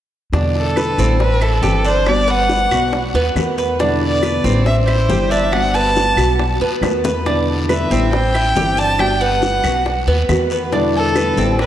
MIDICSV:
0, 0, Header, 1, 7, 480
1, 0, Start_track
1, 0, Key_signature, 1, "minor"
1, 0, Tempo, 432838
1, 373, Time_signature, 4, 2, 24, 8
1, 12933, End_track
2, 0, Start_track
2, 0, Title_t, "Violin"
2, 0, Program_c, 0, 40
2, 637, Note_on_c, 0, 69, 88
2, 1300, Note_off_c, 0, 69, 0
2, 1352, Note_on_c, 0, 71, 90
2, 1588, Note_on_c, 0, 69, 82
2, 1605, Note_off_c, 0, 71, 0
2, 2078, Note_on_c, 0, 72, 95
2, 2094, Note_off_c, 0, 69, 0
2, 2313, Note_on_c, 0, 74, 98
2, 2329, Note_off_c, 0, 72, 0
2, 2549, Note_on_c, 0, 78, 109
2, 2565, Note_off_c, 0, 74, 0
2, 3501, Note_off_c, 0, 78, 0
2, 4464, Note_on_c, 0, 74, 87
2, 5134, Note_off_c, 0, 74, 0
2, 5169, Note_on_c, 0, 76, 95
2, 5278, Note_off_c, 0, 76, 0
2, 5404, Note_on_c, 0, 72, 87
2, 5882, Note_on_c, 0, 76, 91
2, 5898, Note_off_c, 0, 72, 0
2, 6127, Note_on_c, 0, 78, 99
2, 6143, Note_off_c, 0, 76, 0
2, 6368, Note_on_c, 0, 81, 112
2, 6384, Note_off_c, 0, 78, 0
2, 7330, Note_off_c, 0, 81, 0
2, 8545, Note_on_c, 0, 76, 75
2, 8986, Note_off_c, 0, 76, 0
2, 9020, Note_on_c, 0, 79, 96
2, 9741, Note_on_c, 0, 81, 111
2, 9758, Note_off_c, 0, 79, 0
2, 9985, Note_on_c, 0, 79, 109
2, 10002, Note_off_c, 0, 81, 0
2, 10225, Note_on_c, 0, 78, 107
2, 10242, Note_off_c, 0, 79, 0
2, 11180, Note_off_c, 0, 78, 0
2, 12162, Note_on_c, 0, 69, 90
2, 12823, Note_off_c, 0, 69, 0
2, 12873, Note_on_c, 0, 71, 92
2, 12933, Note_off_c, 0, 71, 0
2, 12933, End_track
3, 0, Start_track
3, 0, Title_t, "Cuban tres"
3, 0, Program_c, 1, 25
3, 373, Note_on_c, 1, 62, 67
3, 838, Note_off_c, 1, 62, 0
3, 851, Note_on_c, 1, 71, 70
3, 1084, Note_off_c, 1, 71, 0
3, 1098, Note_on_c, 1, 60, 77
3, 1561, Note_off_c, 1, 60, 0
3, 1569, Note_on_c, 1, 64, 75
3, 1802, Note_on_c, 1, 67, 69
3, 1803, Note_off_c, 1, 64, 0
3, 2040, Note_off_c, 1, 67, 0
3, 2049, Note_on_c, 1, 62, 67
3, 2516, Note_off_c, 1, 62, 0
3, 2524, Note_on_c, 1, 71, 78
3, 2994, Note_off_c, 1, 71, 0
3, 3007, Note_on_c, 1, 66, 63
3, 3475, Note_off_c, 1, 66, 0
3, 3491, Note_on_c, 1, 59, 88
3, 3957, Note_off_c, 1, 59, 0
3, 3971, Note_on_c, 1, 71, 74
3, 4204, Note_off_c, 1, 71, 0
3, 4211, Note_on_c, 1, 62, 78
3, 4677, Note_off_c, 1, 62, 0
3, 4694, Note_on_c, 1, 71, 73
3, 4926, Note_off_c, 1, 71, 0
3, 4926, Note_on_c, 1, 60, 79
3, 5395, Note_off_c, 1, 60, 0
3, 5407, Note_on_c, 1, 64, 74
3, 5643, Note_off_c, 1, 64, 0
3, 5651, Note_on_c, 1, 67, 64
3, 5885, Note_off_c, 1, 67, 0
3, 5891, Note_on_c, 1, 62, 69
3, 6357, Note_off_c, 1, 62, 0
3, 6374, Note_on_c, 1, 71, 75
3, 6839, Note_off_c, 1, 71, 0
3, 6850, Note_on_c, 1, 66, 66
3, 7317, Note_off_c, 1, 66, 0
3, 7332, Note_on_c, 1, 59, 80
3, 7798, Note_off_c, 1, 59, 0
3, 7814, Note_on_c, 1, 71, 70
3, 8046, Note_off_c, 1, 71, 0
3, 8052, Note_on_c, 1, 62, 69
3, 8518, Note_off_c, 1, 62, 0
3, 8531, Note_on_c, 1, 71, 70
3, 8765, Note_off_c, 1, 71, 0
3, 8772, Note_on_c, 1, 60, 83
3, 9238, Note_off_c, 1, 60, 0
3, 9259, Note_on_c, 1, 64, 83
3, 9489, Note_off_c, 1, 64, 0
3, 9498, Note_on_c, 1, 67, 73
3, 9728, Note_off_c, 1, 67, 0
3, 9738, Note_on_c, 1, 62, 71
3, 10201, Note_off_c, 1, 62, 0
3, 10213, Note_on_c, 1, 71, 81
3, 10679, Note_off_c, 1, 71, 0
3, 10693, Note_on_c, 1, 66, 60
3, 11159, Note_off_c, 1, 66, 0
3, 11174, Note_on_c, 1, 59, 83
3, 11639, Note_off_c, 1, 59, 0
3, 11661, Note_on_c, 1, 71, 72
3, 11890, Note_off_c, 1, 71, 0
3, 11898, Note_on_c, 1, 62, 73
3, 12362, Note_off_c, 1, 62, 0
3, 12374, Note_on_c, 1, 71, 74
3, 12607, Note_off_c, 1, 71, 0
3, 12619, Note_on_c, 1, 60, 80
3, 12933, Note_off_c, 1, 60, 0
3, 12933, End_track
4, 0, Start_track
4, 0, Title_t, "Nylon-string guitar"
4, 0, Program_c, 2, 24
4, 365, Note_on_c, 2, 47, 66
4, 368, Note_on_c, 2, 50, 77
4, 372, Note_on_c, 2, 55, 68
4, 381, Note_on_c, 2, 59, 67
4, 386, Note_on_c, 2, 64, 67
4, 1073, Note_off_c, 2, 64, 0
4, 1079, Note_off_c, 2, 47, 0
4, 1080, Note_off_c, 2, 50, 0
4, 1082, Note_off_c, 2, 55, 0
4, 1083, Note_off_c, 2, 59, 0
4, 1086, Note_on_c, 2, 64, 61
4, 1096, Note_on_c, 2, 59, 58
4, 1100, Note_on_c, 2, 55, 56
4, 1113, Note_on_c, 2, 50, 48
4, 1320, Note_off_c, 2, 64, 0
4, 1324, Note_off_c, 2, 59, 0
4, 1326, Note_off_c, 2, 55, 0
4, 1328, Note_off_c, 2, 50, 0
4, 1812, Note_on_c, 2, 52, 44
4, 1819, Note_on_c, 2, 55, 48
4, 1826, Note_on_c, 2, 60, 48
4, 1834, Note_on_c, 2, 64, 56
4, 2273, Note_off_c, 2, 55, 0
4, 2283, Note_off_c, 2, 52, 0
4, 2287, Note_on_c, 2, 55, 66
4, 2289, Note_off_c, 2, 60, 0
4, 2294, Note_off_c, 2, 64, 0
4, 2301, Note_on_c, 2, 59, 70
4, 2308, Note_on_c, 2, 66, 76
4, 3000, Note_off_c, 2, 55, 0
4, 3002, Note_off_c, 2, 66, 0
4, 3007, Note_off_c, 2, 59, 0
4, 3016, Note_on_c, 2, 66, 65
4, 3042, Note_on_c, 2, 59, 55
4, 3244, Note_off_c, 2, 66, 0
4, 3249, Note_off_c, 2, 59, 0
4, 3732, Note_on_c, 2, 51, 53
4, 3740, Note_on_c, 2, 57, 51
4, 3746, Note_on_c, 2, 59, 53
4, 3755, Note_on_c, 2, 66, 53
4, 4203, Note_off_c, 2, 51, 0
4, 4207, Note_off_c, 2, 57, 0
4, 4210, Note_off_c, 2, 59, 0
4, 4214, Note_off_c, 2, 66, 0
4, 4217, Note_on_c, 2, 47, 61
4, 4224, Note_on_c, 2, 50, 72
4, 4230, Note_on_c, 2, 55, 74
4, 4236, Note_on_c, 2, 59, 75
4, 4237, Note_on_c, 2, 64, 66
4, 4923, Note_off_c, 2, 64, 0
4, 4925, Note_off_c, 2, 47, 0
4, 4929, Note_off_c, 2, 50, 0
4, 4932, Note_off_c, 2, 55, 0
4, 4934, Note_off_c, 2, 59, 0
4, 4936, Note_on_c, 2, 64, 61
4, 4947, Note_on_c, 2, 59, 64
4, 4953, Note_on_c, 2, 55, 61
4, 4957, Note_on_c, 2, 50, 52
4, 5165, Note_off_c, 2, 64, 0
4, 5167, Note_off_c, 2, 55, 0
4, 5169, Note_off_c, 2, 50, 0
4, 5170, Note_off_c, 2, 59, 0
4, 5657, Note_on_c, 2, 52, 55
4, 5668, Note_on_c, 2, 55, 57
4, 5674, Note_on_c, 2, 60, 52
4, 5680, Note_on_c, 2, 64, 57
4, 6116, Note_off_c, 2, 55, 0
4, 6125, Note_off_c, 2, 52, 0
4, 6130, Note_on_c, 2, 55, 67
4, 6134, Note_off_c, 2, 60, 0
4, 6137, Note_off_c, 2, 64, 0
4, 6144, Note_on_c, 2, 59, 70
4, 6154, Note_on_c, 2, 66, 66
4, 6834, Note_off_c, 2, 66, 0
4, 6842, Note_off_c, 2, 55, 0
4, 6847, Note_on_c, 2, 66, 70
4, 6849, Note_off_c, 2, 59, 0
4, 6870, Note_on_c, 2, 59, 47
4, 7080, Note_off_c, 2, 66, 0
4, 7087, Note_off_c, 2, 59, 0
4, 7572, Note_on_c, 2, 51, 49
4, 7582, Note_on_c, 2, 57, 50
4, 7587, Note_on_c, 2, 59, 55
4, 7597, Note_on_c, 2, 66, 59
4, 8043, Note_off_c, 2, 51, 0
4, 8045, Note_on_c, 2, 47, 62
4, 8048, Note_off_c, 2, 57, 0
4, 8050, Note_off_c, 2, 59, 0
4, 8053, Note_on_c, 2, 50, 74
4, 8055, Note_off_c, 2, 66, 0
4, 8057, Note_on_c, 2, 55, 65
4, 8065, Note_on_c, 2, 59, 78
4, 8067, Note_on_c, 2, 64, 77
4, 8758, Note_off_c, 2, 64, 0
4, 8759, Note_off_c, 2, 47, 0
4, 8764, Note_off_c, 2, 50, 0
4, 8765, Note_off_c, 2, 55, 0
4, 8767, Note_off_c, 2, 59, 0
4, 8771, Note_on_c, 2, 64, 74
4, 8780, Note_on_c, 2, 59, 62
4, 8786, Note_on_c, 2, 55, 58
4, 8792, Note_on_c, 2, 50, 54
4, 9003, Note_off_c, 2, 64, 0
4, 9007, Note_off_c, 2, 55, 0
4, 9007, Note_off_c, 2, 59, 0
4, 9012, Note_off_c, 2, 50, 0
4, 9497, Note_on_c, 2, 52, 48
4, 9501, Note_on_c, 2, 55, 53
4, 9510, Note_on_c, 2, 60, 49
4, 9515, Note_on_c, 2, 64, 55
4, 9950, Note_off_c, 2, 55, 0
4, 9963, Note_on_c, 2, 55, 68
4, 9965, Note_off_c, 2, 52, 0
4, 9972, Note_off_c, 2, 60, 0
4, 9974, Note_off_c, 2, 64, 0
4, 9976, Note_on_c, 2, 59, 72
4, 9985, Note_on_c, 2, 66, 74
4, 10672, Note_off_c, 2, 66, 0
4, 10679, Note_off_c, 2, 55, 0
4, 10685, Note_off_c, 2, 59, 0
4, 10685, Note_on_c, 2, 66, 61
4, 10711, Note_on_c, 2, 59, 58
4, 10920, Note_off_c, 2, 66, 0
4, 10921, Note_off_c, 2, 59, 0
4, 11404, Note_on_c, 2, 51, 58
4, 11408, Note_on_c, 2, 57, 57
4, 11420, Note_on_c, 2, 59, 54
4, 11423, Note_on_c, 2, 66, 61
4, 11879, Note_off_c, 2, 51, 0
4, 11881, Note_off_c, 2, 57, 0
4, 11887, Note_off_c, 2, 59, 0
4, 11889, Note_off_c, 2, 66, 0
4, 11890, Note_on_c, 2, 47, 68
4, 11893, Note_on_c, 2, 50, 70
4, 11901, Note_on_c, 2, 55, 66
4, 11905, Note_on_c, 2, 59, 76
4, 11913, Note_on_c, 2, 64, 77
4, 12599, Note_off_c, 2, 64, 0
4, 12603, Note_off_c, 2, 47, 0
4, 12604, Note_off_c, 2, 50, 0
4, 12606, Note_off_c, 2, 59, 0
4, 12608, Note_off_c, 2, 55, 0
4, 12613, Note_on_c, 2, 64, 67
4, 12620, Note_on_c, 2, 59, 60
4, 12628, Note_on_c, 2, 55, 59
4, 12635, Note_on_c, 2, 50, 55
4, 12842, Note_off_c, 2, 55, 0
4, 12844, Note_off_c, 2, 64, 0
4, 12847, Note_off_c, 2, 50, 0
4, 12847, Note_off_c, 2, 59, 0
4, 12933, End_track
5, 0, Start_track
5, 0, Title_t, "Upright bass"
5, 0, Program_c, 3, 32
5, 360, Note_on_c, 3, 40, 77
5, 1042, Note_off_c, 3, 40, 0
5, 1088, Note_on_c, 3, 33, 82
5, 1766, Note_off_c, 3, 33, 0
5, 1795, Note_on_c, 3, 31, 74
5, 2935, Note_off_c, 3, 31, 0
5, 3006, Note_on_c, 3, 35, 73
5, 3456, Note_off_c, 3, 35, 0
5, 3482, Note_on_c, 3, 39, 60
5, 3710, Note_off_c, 3, 39, 0
5, 3721, Note_on_c, 3, 40, 81
5, 4858, Note_off_c, 3, 40, 0
5, 4924, Note_on_c, 3, 33, 86
5, 5604, Note_off_c, 3, 33, 0
5, 5644, Note_on_c, 3, 31, 81
5, 6780, Note_off_c, 3, 31, 0
5, 6836, Note_on_c, 3, 35, 83
5, 7290, Note_off_c, 3, 35, 0
5, 7322, Note_on_c, 3, 39, 57
5, 7550, Note_off_c, 3, 39, 0
5, 7558, Note_on_c, 3, 40, 80
5, 8697, Note_off_c, 3, 40, 0
5, 8767, Note_on_c, 3, 33, 78
5, 9446, Note_off_c, 3, 33, 0
5, 9490, Note_on_c, 3, 31, 76
5, 10624, Note_off_c, 3, 31, 0
5, 10690, Note_on_c, 3, 35, 79
5, 11138, Note_off_c, 3, 35, 0
5, 11167, Note_on_c, 3, 39, 60
5, 11393, Note_off_c, 3, 39, 0
5, 11410, Note_on_c, 3, 40, 85
5, 12544, Note_off_c, 3, 40, 0
5, 12607, Note_on_c, 3, 33, 78
5, 12933, Note_off_c, 3, 33, 0
5, 12933, End_track
6, 0, Start_track
6, 0, Title_t, "Muted nylon-string guitar strokes"
6, 1332, Note_on_c, 9, 29, 53
6, 1443, Note_off_c, 9, 29, 0
6, 3254, Note_on_c, 9, 29, 62
6, 3365, Note_off_c, 9, 29, 0
6, 5173, Note_on_c, 9, 29, 52
6, 5284, Note_off_c, 9, 29, 0
6, 7090, Note_on_c, 9, 29, 57
6, 7201, Note_off_c, 9, 29, 0
6, 9016, Note_on_c, 9, 29, 53
6, 9127, Note_off_c, 9, 29, 0
6, 10928, Note_on_c, 9, 29, 56
6, 11039, Note_off_c, 9, 29, 0
6, 12852, Note_on_c, 9, 29, 61
6, 12933, Note_off_c, 9, 29, 0
6, 12933, End_track
7, 0, Start_track
7, 0, Title_t, "Drums"
7, 369, Note_on_c, 9, 74, 67
7, 372, Note_on_c, 9, 60, 70
7, 480, Note_off_c, 9, 74, 0
7, 482, Note_off_c, 9, 60, 0
7, 613, Note_on_c, 9, 60, 34
7, 724, Note_off_c, 9, 60, 0
7, 846, Note_on_c, 9, 75, 64
7, 854, Note_on_c, 9, 73, 69
7, 856, Note_on_c, 9, 60, 53
7, 957, Note_off_c, 9, 75, 0
7, 965, Note_off_c, 9, 73, 0
7, 967, Note_off_c, 9, 60, 0
7, 1092, Note_on_c, 9, 73, 79
7, 1094, Note_on_c, 9, 60, 32
7, 1203, Note_off_c, 9, 73, 0
7, 1205, Note_off_c, 9, 60, 0
7, 1326, Note_on_c, 9, 74, 61
7, 1333, Note_on_c, 9, 60, 66
7, 1437, Note_off_c, 9, 74, 0
7, 1443, Note_off_c, 9, 60, 0
7, 1569, Note_on_c, 9, 75, 72
7, 1573, Note_on_c, 9, 60, 38
7, 1680, Note_off_c, 9, 75, 0
7, 1684, Note_off_c, 9, 60, 0
7, 1805, Note_on_c, 9, 73, 56
7, 1816, Note_on_c, 9, 60, 34
7, 1816, Note_on_c, 9, 61, 72
7, 1916, Note_off_c, 9, 73, 0
7, 1927, Note_off_c, 9, 60, 0
7, 1927, Note_off_c, 9, 61, 0
7, 2046, Note_on_c, 9, 73, 68
7, 2157, Note_off_c, 9, 73, 0
7, 2287, Note_on_c, 9, 74, 63
7, 2288, Note_on_c, 9, 75, 67
7, 2291, Note_on_c, 9, 60, 62
7, 2398, Note_off_c, 9, 74, 0
7, 2399, Note_off_c, 9, 75, 0
7, 2402, Note_off_c, 9, 60, 0
7, 2530, Note_on_c, 9, 60, 34
7, 2641, Note_off_c, 9, 60, 0
7, 2766, Note_on_c, 9, 60, 56
7, 2771, Note_on_c, 9, 73, 60
7, 2877, Note_off_c, 9, 60, 0
7, 2882, Note_off_c, 9, 73, 0
7, 3009, Note_on_c, 9, 60, 31
7, 3009, Note_on_c, 9, 73, 66
7, 3012, Note_on_c, 9, 75, 73
7, 3120, Note_off_c, 9, 60, 0
7, 3120, Note_off_c, 9, 73, 0
7, 3122, Note_off_c, 9, 75, 0
7, 3245, Note_on_c, 9, 74, 64
7, 3249, Note_on_c, 9, 60, 66
7, 3356, Note_off_c, 9, 74, 0
7, 3360, Note_off_c, 9, 60, 0
7, 3488, Note_on_c, 9, 60, 40
7, 3599, Note_off_c, 9, 60, 0
7, 3727, Note_on_c, 9, 73, 65
7, 3729, Note_on_c, 9, 75, 55
7, 3731, Note_on_c, 9, 60, 31
7, 3731, Note_on_c, 9, 61, 76
7, 3838, Note_off_c, 9, 73, 0
7, 3840, Note_off_c, 9, 75, 0
7, 3842, Note_off_c, 9, 60, 0
7, 3842, Note_off_c, 9, 61, 0
7, 3967, Note_on_c, 9, 73, 62
7, 4078, Note_off_c, 9, 73, 0
7, 4207, Note_on_c, 9, 74, 65
7, 4213, Note_on_c, 9, 60, 66
7, 4318, Note_off_c, 9, 74, 0
7, 4324, Note_off_c, 9, 60, 0
7, 4450, Note_on_c, 9, 60, 32
7, 4561, Note_off_c, 9, 60, 0
7, 4687, Note_on_c, 9, 75, 64
7, 4690, Note_on_c, 9, 60, 58
7, 4692, Note_on_c, 9, 73, 63
7, 4798, Note_off_c, 9, 75, 0
7, 4801, Note_off_c, 9, 60, 0
7, 4803, Note_off_c, 9, 73, 0
7, 4933, Note_on_c, 9, 60, 34
7, 4937, Note_on_c, 9, 73, 72
7, 5044, Note_off_c, 9, 60, 0
7, 5048, Note_off_c, 9, 73, 0
7, 5169, Note_on_c, 9, 60, 68
7, 5177, Note_on_c, 9, 74, 67
7, 5280, Note_off_c, 9, 60, 0
7, 5288, Note_off_c, 9, 74, 0
7, 5408, Note_on_c, 9, 75, 65
7, 5412, Note_on_c, 9, 60, 37
7, 5519, Note_off_c, 9, 75, 0
7, 5523, Note_off_c, 9, 60, 0
7, 5650, Note_on_c, 9, 73, 68
7, 5652, Note_on_c, 9, 60, 31
7, 5652, Note_on_c, 9, 61, 80
7, 5761, Note_off_c, 9, 73, 0
7, 5763, Note_off_c, 9, 60, 0
7, 5763, Note_off_c, 9, 61, 0
7, 5890, Note_on_c, 9, 73, 69
7, 6001, Note_off_c, 9, 73, 0
7, 6127, Note_on_c, 9, 75, 69
7, 6133, Note_on_c, 9, 60, 65
7, 6134, Note_on_c, 9, 74, 67
7, 6238, Note_off_c, 9, 75, 0
7, 6244, Note_off_c, 9, 60, 0
7, 6245, Note_off_c, 9, 74, 0
7, 6373, Note_on_c, 9, 60, 31
7, 6484, Note_off_c, 9, 60, 0
7, 6606, Note_on_c, 9, 73, 65
7, 6617, Note_on_c, 9, 60, 51
7, 6716, Note_off_c, 9, 73, 0
7, 6728, Note_off_c, 9, 60, 0
7, 6845, Note_on_c, 9, 75, 67
7, 6852, Note_on_c, 9, 73, 65
7, 6853, Note_on_c, 9, 60, 33
7, 6956, Note_off_c, 9, 75, 0
7, 6963, Note_off_c, 9, 73, 0
7, 6964, Note_off_c, 9, 60, 0
7, 7091, Note_on_c, 9, 60, 64
7, 7092, Note_on_c, 9, 74, 73
7, 7202, Note_off_c, 9, 60, 0
7, 7203, Note_off_c, 9, 74, 0
7, 7334, Note_on_c, 9, 60, 36
7, 7445, Note_off_c, 9, 60, 0
7, 7568, Note_on_c, 9, 75, 61
7, 7570, Note_on_c, 9, 73, 56
7, 7574, Note_on_c, 9, 60, 88
7, 7679, Note_off_c, 9, 75, 0
7, 7681, Note_off_c, 9, 73, 0
7, 7685, Note_off_c, 9, 60, 0
7, 7808, Note_on_c, 9, 73, 74
7, 7816, Note_on_c, 9, 61, 88
7, 7918, Note_off_c, 9, 73, 0
7, 7927, Note_off_c, 9, 61, 0
7, 8053, Note_on_c, 9, 74, 69
7, 8055, Note_on_c, 9, 60, 68
7, 8164, Note_off_c, 9, 74, 0
7, 8166, Note_off_c, 9, 60, 0
7, 8297, Note_on_c, 9, 60, 29
7, 8408, Note_off_c, 9, 60, 0
7, 8530, Note_on_c, 9, 75, 62
7, 8535, Note_on_c, 9, 60, 56
7, 8537, Note_on_c, 9, 73, 63
7, 8641, Note_off_c, 9, 75, 0
7, 8646, Note_off_c, 9, 60, 0
7, 8648, Note_off_c, 9, 73, 0
7, 8775, Note_on_c, 9, 73, 72
7, 8776, Note_on_c, 9, 60, 35
7, 8886, Note_off_c, 9, 73, 0
7, 8887, Note_off_c, 9, 60, 0
7, 9009, Note_on_c, 9, 74, 66
7, 9018, Note_on_c, 9, 60, 70
7, 9120, Note_off_c, 9, 74, 0
7, 9129, Note_off_c, 9, 60, 0
7, 9254, Note_on_c, 9, 75, 71
7, 9256, Note_on_c, 9, 60, 39
7, 9365, Note_off_c, 9, 75, 0
7, 9367, Note_off_c, 9, 60, 0
7, 9483, Note_on_c, 9, 73, 67
7, 9500, Note_on_c, 9, 60, 32
7, 9500, Note_on_c, 9, 61, 82
7, 9594, Note_off_c, 9, 73, 0
7, 9611, Note_off_c, 9, 60, 0
7, 9611, Note_off_c, 9, 61, 0
7, 9728, Note_on_c, 9, 73, 74
7, 9838, Note_off_c, 9, 73, 0
7, 9966, Note_on_c, 9, 74, 67
7, 9971, Note_on_c, 9, 75, 72
7, 9974, Note_on_c, 9, 60, 63
7, 10077, Note_off_c, 9, 74, 0
7, 10082, Note_off_c, 9, 75, 0
7, 10085, Note_off_c, 9, 60, 0
7, 10215, Note_on_c, 9, 60, 32
7, 10326, Note_off_c, 9, 60, 0
7, 10447, Note_on_c, 9, 73, 76
7, 10454, Note_on_c, 9, 60, 57
7, 10558, Note_off_c, 9, 73, 0
7, 10565, Note_off_c, 9, 60, 0
7, 10686, Note_on_c, 9, 73, 75
7, 10688, Note_on_c, 9, 75, 70
7, 10692, Note_on_c, 9, 60, 35
7, 10797, Note_off_c, 9, 73, 0
7, 10799, Note_off_c, 9, 75, 0
7, 10803, Note_off_c, 9, 60, 0
7, 10930, Note_on_c, 9, 74, 70
7, 10934, Note_on_c, 9, 60, 60
7, 11041, Note_off_c, 9, 74, 0
7, 11045, Note_off_c, 9, 60, 0
7, 11173, Note_on_c, 9, 60, 36
7, 11284, Note_off_c, 9, 60, 0
7, 11410, Note_on_c, 9, 73, 64
7, 11412, Note_on_c, 9, 60, 33
7, 11412, Note_on_c, 9, 61, 81
7, 11412, Note_on_c, 9, 75, 68
7, 11521, Note_off_c, 9, 73, 0
7, 11523, Note_off_c, 9, 60, 0
7, 11523, Note_off_c, 9, 61, 0
7, 11523, Note_off_c, 9, 75, 0
7, 11646, Note_on_c, 9, 73, 68
7, 11757, Note_off_c, 9, 73, 0
7, 11890, Note_on_c, 9, 74, 66
7, 11894, Note_on_c, 9, 60, 65
7, 12001, Note_off_c, 9, 74, 0
7, 12005, Note_off_c, 9, 60, 0
7, 12135, Note_on_c, 9, 60, 34
7, 12246, Note_off_c, 9, 60, 0
7, 12371, Note_on_c, 9, 60, 58
7, 12372, Note_on_c, 9, 73, 72
7, 12372, Note_on_c, 9, 75, 68
7, 12482, Note_off_c, 9, 60, 0
7, 12483, Note_off_c, 9, 73, 0
7, 12483, Note_off_c, 9, 75, 0
7, 12613, Note_on_c, 9, 73, 70
7, 12617, Note_on_c, 9, 60, 34
7, 12724, Note_off_c, 9, 73, 0
7, 12728, Note_off_c, 9, 60, 0
7, 12855, Note_on_c, 9, 60, 65
7, 12859, Note_on_c, 9, 74, 68
7, 12933, Note_off_c, 9, 60, 0
7, 12933, Note_off_c, 9, 74, 0
7, 12933, End_track
0, 0, End_of_file